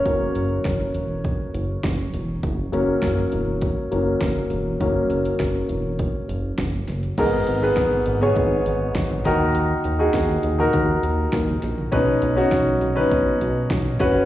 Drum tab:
CC |----------------|----------------|----------------|x---------------|
HH |x-x-x-x-x-x-x-x-|x-x-x-x-x-x-x-x-|x-xxx-x-x-x-x-xx|x-x-x-x-x-x-x-x-|
SD |----o-------o---|----o-------o---|----o-------o-o-|----o-------o-o-|
FT |----------------|----------------|----------------|-------o-----o-o|
BD |o---o---o---o---|o---o---o---o---|o---o---o---o---|o---o---o---o-o-|

CC |----------------|----------------|
HH |x-x-x-x-x-x-x-x-|x-x-x-x-x-x-x-x-|
SD |----o-------o-o-|----o-------o-o-|
FT |-------o-----o-o|-------o-----o-o|
BD |----o---o---o---|o---o---o---o-o-|